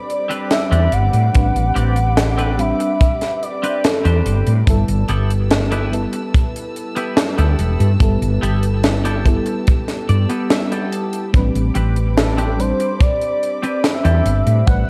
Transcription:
Already playing: G3 C4 D4 G4 B4 D5 B5 D6
0.10 closed hi-hat
0.29 C4 D4 G4 B4, closed hi-hat
0.51 E5, snare, closed hi-hat
0.71 E2 C4 D4 G4 D5, closed hi-hat
0.92 G1 F#5, closed hi-hat
1.13 A2, closed hi-hat
1.33 A1 G3 C4 D4 B4, kick, closed hi-hat
1.55 A1, closed hi-hat
1.75 A1 C4 D4 G4 D5, closed hi-hat
1.96 closed hi-hat
2.17 muted clean electric guitar stroke, snare, closed hi-hat
2.38 C4 D4 G4 B4, closed hi-hat
2.58 G3 C4 D4 E5 B5, closed hi-hat
2.79 muted clean electric guitar stroke, closed hi-hat
3.01 kick, closed hi-hat
3.21 snare, closed hi-hat
3.42 D5, closed hi-hat
3.63 C4 D4 G4 B4, closed hi-hat
3.84 A4, snare, closed hi-hat
4.05 E2 C4 D4 G4 C5, closed hi-hat
4.26 G1, closed hi-hat
4.47 A2, closed hi-hat
4.66 G1 G3 B3 E4 G4 A4 B4 A5 E6, kick, closed hi-hat
4.88 G1, closed hi-hat
5.08 G1 B3 E4 G4 A4, closed hi-hat
5.30 closed hi-hat
5.50 muted clean electric guitar stroke, snare, closed hi-hat
5.71 B3 E4 G4 B4, closed hi-hat
5.91 G3 B3 E4 A4, closed hi-hat
6.13 muted clean electric guitar stroke, closed hi-hat
6.34 kick, closed hi-hat
6.56 closed hi-hat
6.76 closed hi-hat
6.96 B3 E4 G4 B4, closed hi-hat
7.17 snare, closed hi-hat
7.38 D2 B3 E4 G4 A4, closed hi-hat
7.59 E1, closed hi-hat
7.80 G2, closed hi-hat
7.99 G1 G3 B3 E4 A4, kick, closed hi-hat
8.22 G1, closed hi-hat
8.42 G1 B3 E4 G4 A4, closed hi-hat
8.63 closed hi-hat
8.84 muted clean electric guitar stroke, snare, closed hi-hat
9.05 B3 E4 G4 A4, closed hi-hat
9.24 G3 B3 E4 A4, kick, closed hi-hat
9.46 muted clean electric guitar stroke, closed hi-hat
9.67 kick, closed hi-hat
9.88 snare, closed hi-hat
10.09 G2 D5, closed hi-hat
10.29 B3 E4 G4 A4, closed hi-hat
10.50 E5, snare, closed hi-hat
10.72 B3 E4 G4 A4, closed hi-hat
10.92 A5, closed hi-hat
11.13 closed hi-hat
11.33 A1 G3 C4 D4 B4 B5 D6, kick, closed hi-hat
11.55 A1, closed hi-hat
11.75 A1 C4 D4 G4 B4, closed hi-hat
11.96 closed hi-hat
12.17 A4, muted clean electric guitar stroke, snare, closed hi-hat
12.38 C4 D4 G4 B4, closed hi-hat
12.57 G3 C4 D4 C5, closed hi-hat
12.80 muted clean electric guitar stroke, closed hi-hat
13.00 D5, kick, closed hi-hat
13.21 closed hi-hat
13.43 closed hi-hat
13.63 C4 D4 G4 B4, closed hi-hat
13.83 E5, snare, closed hi-hat
14.04 E2 C4 D4 G4 A4, closed hi-hat
14.26 G1, closed hi-hat
14.46 A2, closed hi-hat
14.65 A1 G3 C4 D4 B4 F#5 E6, kick, closed hi-hat

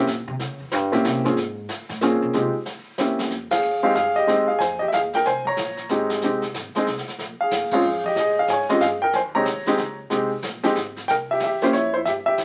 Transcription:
0.07 A#2, snare
0.28 C3
0.39 C#3, brush sweep, snare
0.60 E2
0.71 G2, snare
0.92 A#2 A#3 C4 C#4 E4 G4, snare
1.04 C3, snare
1.25 G#2 A#3 C4 C#4 F4 G#4, snare
1.37 brush sweep, snare
1.69 snare
1.89 A2, snare
2.01 A#2 A#3 C4 C#4 F4 G#4, snare
2.22 B2
2.33 C3 G#3 C4 D#4 F4 G4, brush sweep, snare
2.66 snare
2.98 A#3 C4 C#4 E4 G4, snare
3.19 snare
3.30 F2, brush sweep, kick, snare
3.50 G#4 F5, snare, ride
3.62 D#2, hi-hat pedal
3.83 G#3 C4 D#4 G4 G#4 F5
3.95 G2 G#4 F5, kick, snare
4.16 G4 D#5
4.27 G#2 G#3 C4 D#4 G4, brush sweep, kick, snare
4.48 G#4 F5
4.59 F2 C5 G#5, kick, snare
4.79 G4 D#5
4.88 E5, kick, hi-hat pedal
4.92 D#2 G#4 F5, snare
5.13 A#4 G5, snare
5.24 C2 C5 G#5, brush sweep, kick, snare
5.45 C#5 A#5, kick
5.56 A#1, kick, snare, hi-hat pedal
5.77 snare
5.89 G#1 G#3 C4 D#4 G4, kick, snare
6.10 snare
6.21 C2 G#3 C4 D#4 G4, brush sweep, kick, snare
6.42 snare
6.54 G#1, kick, snare, hi-hat pedal
6.75 G#3 C4 D#4 G#4, muted upright bass stroke, snare
6.86 C2, kick, snare
6.97 snare
7.07 muted upright bass stroke, snare
7.18 A#1, brush sweep, kick, snare
7.39 G#4 F5, muted upright bass stroke
7.51 G2, kick, snare, hi-hat pedal
7.71 G#3 C4 C#4 F4 F5, muted upright bass stroke, kick, ride
7.75 G#4
7.82 F2
8.04 G4 D#5, kick
8.16 A#2 D#5, brush sweep, kick, snare
8.20 G#4
8.39 G#4 F5
8.48 G#2 G#5, kick, snare, hi-hat pedal
8.53 C#5
8.69 G#3 C4 C#4 F4 G4 D#5, snare
8.80 G2 G#4 F5, kick, snare
9.02 A#4 G5
9.13 F2 C5 G#5, brush sweep, kick, snare
9.24 D#2
9.35 C2 G#3 C4 D#4 G4 C#5 A#5
9.45 D#2, kick, snare, hi-hat pedal
9.66 G#3 C4 D#4 G4, snare
9.78 C#2, kick, snare
10.10 C2 G#3 C4 D#4 G4, brush sweep, kick, snare
10.42 A#1, kick, snare, hi-hat pedal
10.63 G#3 C4 D#4 G4, snare
10.75 G#1, kick, snare, hi-hat pedal
10.96 snare
11.08 C2 A#4 G5, brush sweep, kick, snare
11.31 G4 E5
11.40 E2, kick, snare, hi-hat pedal
11.44 G4 E5
11.62 A#3 C#4 E4 G4 C5, snare
11.73 F2 E4 C#5, kick, snare
11.94 E4 C5
12.05 G2 G4 E5, brush sweep, kick, snare
12.26 G4 E5
12.37 E2, kick, snare, hi-hat pedal

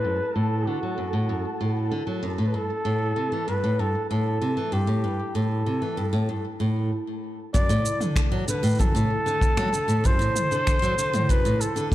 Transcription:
Already playing: A4 B4 A5
0.04 F#2
0.35 A2 A4
0.67 D3 F#4
0.83 F#3
0.98 F#2
1.13 A2
1.29 F#2
1.61 A2
1.92 D3
2.07 F#3
2.23 F#2
2.38 A2
2.47 B4
2.54 G2 A4
2.85 A2
3.16 C3
3.32 E3
3.48 G2 B4
3.64 A2
3.79 G2 A4
4.10 A2 A4
4.42 C3
4.57 E3
4.72 G2 G4
4.87 A2
5.04 G2
5.35 A2 A4
5.66 C3
5.82 E3
5.97 G2
6.13 A2
6.29 G2
6.60 A2
7.54 F#2 A4 D5 A5, kick, shaker
7.69 A2, shaker
7.86 shaker
8.01 D3, mid tom, shaker
8.16 finger snap, kick, shaker
8.32 F#3
8.48 D3 B4, shaker
8.63 A2, shaker
8.66 shaker
8.69 shaker
8.72 shaker
8.75 shaker
8.77 F#2 A4, kick, mid tom, shaker
8.80 shaker
8.95 A2, shaker
9.26 D3, shaker
9.41 kick, shaker
9.57 F#3, finger snap, mid tom, shaker
9.63 mid tom
9.68 mid tom
9.73 D3, shaker
9.88 A2, shaker
10.04 F#2 C5, kick, shaker
10.19 A2, shaker
10.36 mid tom, shaker
10.51 D3, shaker
10.67 finger snap, kick, shaker
10.82 F#3, shaker
10.98 D3, shaker
11.13 A2, mid tom, shaker
11.29 F#2 B4, kick, shaker
11.45 A2, shaker
11.61 A4, shaker
11.76 D3, shaker
11.92 kick

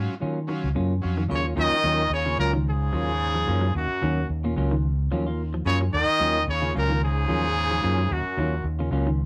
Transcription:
Already playing: F#3 C#4 F4
0.20 D#3 F#3 A#3 C#4 F4
0.47 D#3 F#3 C#4 F4
0.64 C#2
0.75 F#2 C#3 F#3 A#3 C#4 F4
1.02 F2 F#3 C#4 F4
1.17 D#3
1.28 D#2 C#3 F#3 A#3 C#4 F4
1.34 C#3 C#5
1.43 A#3 C#4 F4
1.56 D#2 D#3 F#3 A#3 C#4 F4
1.60 D#3 D#5
1.72 muted fingered electric bass stroke
1.84 D#2 D#3 F#3 A#3 C#4 F4
2.10 D#2 C#3 C#5
2.15 C#3
2.26 C#3 A#3 C#4 F4
2.38 C#2 A#2 F#3 C#4 F4 A#4
2.53 D#3
2.66 G#2 C#3 G#4
2.93 D#2 F#3 A#3 C#4 F4, muted clean electric guitar stroke
3.35 F3
3.47 F#2 F#3 A#3 C#4 F4
3.61 F#3
3.75 D#2 F#2 F#4
3.90 muted fingered electric bass stroke
4.01 D#2 D#3 F#3 A#3 C#4, muted clean electric guitar stroke
4.29 D#2
4.44 A#2 A#3 C#4 F4
4.56 C#2 F#3 A#3 C#4 F4
4.71 D#3
5.11 D#2 F3 F#3 A#3 C#4 F4
5.26 A#3 F4
5.54 F3
5.65 F#2 C#3 F#3 A#3 C#4 F4 C#5
5.81 F#3
5.92 D#2 D#3 D#5
6.08 muted fingered electric bass stroke
6.20 D#2 D#3 F#3 A#3 C#4 F4
6.48 D#2 C#3 C#5
6.62 C#3 A#3 C#4 F4
6.74 C#2 A#2 F#3 A#3 C#4 F4
6.78 A#4
6.90 D#3
7.03 G#2 C#3 G#4
7.27 D#2 F3 F#3 A#3 C#4 F4
7.71 F3
7.82 F#2 F#3 A#3 C#4 F4
7.99 F#3
8.11 D#2 F#2 F#4
8.25 muted fingered electric bass stroke
8.37 D#2 D#3 F#3 A#3 C#4 F4
8.64 D#2
8.79 C#3 A#3 C#4 F4
8.91 C#2 F#3 A#3 C#4 F4
9.07 D#3

